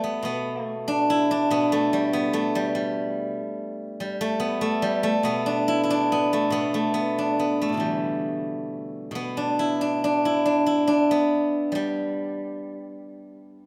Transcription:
Already playing: A3
0.04 B3
0.23 B2 B3
0.64 A3
0.88 D4
1.10 E4
1.31 D4
1.50 B2 B3
1.72 A3
1.93 G3
2.13 B3
2.33 A3
2.55 G3
2.75 G3
4.00 G3
4.21 A3
4.40 B3
4.61 A3
4.82 G3
5.03 A3
5.23 B2 B3
5.46 D4
5.68 E4
5.84 E4
5.90 D4
6.12 B3
6.33 A3
6.50 B2 B3
6.74 A3
6.94 B3
7.18 D4
7.39 B3
7.62 A3
7.69 A2 B2
7.74 D3 E3
7.80 G3
9.11 B2
9.15 B3
9.37 D4
9.59 E4
9.81 D4
10.04 D4
10.25 E4
10.46 D4
10.66 E4
10.87 D4
11.11 B3
11.72 G3

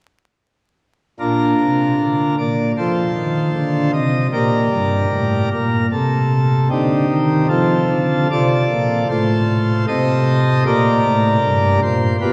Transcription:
1.20 A#2 D4 F4 A#4
1.61 C3
2.00 D3
2.38 A#2 D5
2.78 F3 F4 A4 C5
3.16 D#3
3.54 D3
3.93 C3 D#5
4.33 A#2 G4 A#4 D5
4.71 G2
5.12 A2
5.52 A#2 A#4
5.92 C3 A4
6.70 D3 C4 D#4 G4
7.10 D#3
7.49 F3 C4 F4 A4
7.90 D3
8.31 C3 F4 A4 D5
8.70 A#2
9.09 A2 F4 A4 C5
9.88 C3 A4 C5 D#5
10.66 A#2 G4 A#4 D5
11.05 A2
11.44 G2
11.83 A#2 C5
12.21 B2 F4 G4 B4

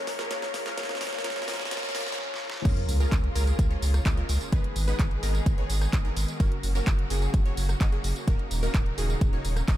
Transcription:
Already playing: C#3 F3 G#3 A#3 C#4 F4 G#4 A#4 C#5, riser
0.07 snare, open hi-hat
0.19 A#3 C#4 F4 G#4 A#4, snare, closed hi-hat
0.29 F3 G#3 A#3 C#4 F4 G#4 A#4 C#5, snare, closed hi-hat
0.42 C#5, snare, closed hi-hat
0.54 snare, open hi-hat
0.66 A#3 C#4 F4 G#4 A#4, snare, closed hi-hat
0.76 D#3 F3 G#3 A#3 C#4 F4 G#4 A#4 C#5, snare, closed hi-hat
0.83 snare
0.89 C#5, snare, closed hi-hat
0.95 snare
1.00 F3 G#3 A#3 C#4 F4 G#4 A#4 C#5, snare, open hi-hat
1.07 snare
1.13 C#5, snare
1.19 snare
1.23 F3 G#3 A#3 C#4 F4 G#4 A#4 C#5, snare, closed hi-hat
1.30 snare
1.36 C#5, snare, closed hi-hat
1.42 snare
1.47 F3 G#3 A#3 C#4 F4 G#4 A#4 C#5, snare, open hi-hat
1.54 snare
1.60 C#5, snare, closed hi-hat
1.65 snare
1.70 F3 G#3 A#3 C#4 F4 G#4 A#4 C#5, snare, closed hi-hat, swell
1.77 snare
1.83 C#5, snare, closed hi-hat
1.89 snare
1.94 F3 G#3 A#3 C#4 F4 G#4 A#4 C#5, snare, open hi-hat
2.01 snare
2.07 C#5, snare, closed hi-hat
2.12 snare
2.17 F3 G#3 A#3 C#4, snare
2.34 snare
2.41 F3 G#3 A#3 C#4
2.50 snare
2.65 C#2 C#3 G#3 A#3 C#4 F4 G#4 A#4, kick, closed hi-hat, crash, tambourine, sub drop
2.77 closed hi-hat
2.89 C#2, open hi-hat, tambourine
3.00 A#3 C#4 F4 G#4 A#4, closed hi-hat, tambourine
3.12 C#2, kick, clap, closed hi-hat
3.24 closed hi-hat
3.35 C#2 A#3 C#4 F4 G#4 A#4, open hi-hat, tambourine
3.47 closed hi-hat, tambourine
3.59 C#2, kick, closed hi-hat, tambourine
3.70 A#3 C#4 F4 G#4 C#5, closed hi-hat
3.82 C#2, open hi-hat, tambourine
3.94 cross-stick, closed hi-hat, tambourine
4.06 C#2 A#3 C#4 F4 G#4 D#5, kick, clap, closed hi-hat, tambourine
4.17 A#3 C#4 F4 G#4 A#4, closed hi-hat
4.29 C#2, open hi-hat, tambourine
4.41 closed hi-hat, tambourine
4.52 G#1 D#3 G#3 B3 D#4 G#4 B4, kick, closed hi-hat, tambourine
4.64 closed hi-hat
4.76 G#1, open hi-hat, tambourine
4.88 G#3 B3 D#4 G#4 B4, closed hi-hat, tambourine
4.99 G#1, kick, clap, closed hi-hat, tambourine
5.11 closed hi-hat
5.23 G#1 G#3 B3 D#4 G#4 A#4, open hi-hat, tambourine
5.35 closed hi-hat, tambourine
5.46 G#1, kick, closed hi-hat, tambourine
5.58 G#3 B3 D#4 G#4 C#5, closed hi-hat
5.70 G#1, open hi-hat, tambourine
5.81 cross-stick, closed hi-hat, tambourine
5.93 G#1 G#3 B3 D#4 G#4 D#5, kick, clap, closed hi-hat
6.05 G#3 B3 D#4 G#4 A#4, closed hi-hat
6.17 G#1, open hi-hat, tambourine
6.28 closed hi-hat, tambourine
6.40 F#1 C#3 F#3 A#3 C#4 F#4 A#4, kick, closed hi-hat, tambourine
6.52 closed hi-hat
6.63 F#1, open hi-hat, tambourine
6.75 F#3 A#3 C#4 F#4 A#4, closed hi-hat, tambourine
6.87 F#1, kick, clap, closed hi-hat, tambourine
6.99 closed hi-hat
7.10 F#1 F#3 A#3 C#4 F#4 G#4, open hi-hat, tambourine
7.22 closed hi-hat, tambourine
7.34 F#1, kick, closed hi-hat, tambourine
7.45 F#3 A#3 C#4 F#4 C#5, closed hi-hat
7.57 F#1, open hi-hat, tambourine
7.69 cross-stick, closed hi-hat, tambourine
7.81 F#1 F#3 A#3 C#4 F#4 D#5, kick, clap, closed hi-hat, tambourine
7.92 F#3 A#3 C#4 F#4 G#4, closed hi-hat
8.04 F#1, open hi-hat, tambourine
8.16 closed hi-hat, tambourine
8.27 D#1 C#3 F#3 A#3 C#4 D#4 F#4 A#4, kick, closed hi-hat, tambourine
8.39 closed hi-hat
8.51 D#1, open hi-hat, tambourine
8.63 A#3 C#4 D#4 F#4 A#4, closed hi-hat, tambourine
8.74 D#1, kick, clap, closed hi-hat, tambourine
8.86 closed hi-hat
8.98 D#1 A#3 C#4 D#4 F#4 G#4, open hi-hat, tambourine
9.10 closed hi-hat, tambourine
9.21 D#1, kick, closed hi-hat, tambourine
9.33 A#3 C#4 D#4 F#4 C#5, closed hi-hat
9.45 D#1, open hi-hat, tambourine
9.56 cross-stick, closed hi-hat, tambourine
9.68 D#1 A#3 C#4 D#4 F#4 D#5, kick, clap, closed hi-hat, tambourine

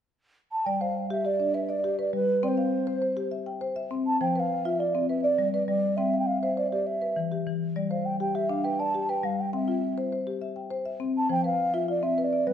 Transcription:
0.52 A5
0.65 G3 D5 G5
0.81 C5 F5
1.10 G4 E5
1.25 G4 D5
1.40 D4
1.54 B4 E5
1.69 D5
1.84 G4
1.99 B4 D5
2.13 G3 B4
2.43 C4 D5 G5
2.48 C5
2.57 F5
2.87 C5
3.02 C5
3.17 G4
3.31 E5
3.46 G5
3.61 C5
3.76 E5
3.91 C4
4.07 A5
4.21 F3 C5 G5
4.35 B4 G5
4.40 F5
4.65 F4 E5
4.79 F4 D5
4.95 C4
5.09 B4 E5
5.23 D5
5.38 G3
5.53 B4 D5
5.67 G3 D5
5.97 C4 E5 G5
6.13 F5
6.19 G5
6.26 F5
6.41 C5 E5
6.57 C5 D5
6.71 G4 D5
6.87 E5
7.02 B4
7.16 E3
7.32 G4
7.46 E3
7.76 G3 D5
7.90 C5 F5
8.05 G5
8.20 G4 G5
8.35 G4 E5
8.49 D4 F5
8.64 B4 G5
8.79 D5 A5
8.94 G4
9.09 B4 G5
9.23 G3 F5
9.40 G5
9.53 C4 E5 G5
9.68 F4
9.98 C5
10.12 C5
10.27 G4
10.41 E5
10.56 G5
10.71 C5
10.86 E5
11.00 C4
11.17 A5
11.29 F3 C5 G5
11.44 B4 F5
11.74 F4 E5
11.88 F4 D5
12.03 C4 E5
12.18 B4 E5
12.24 D5
12.33 D5
12.47 G3 B4

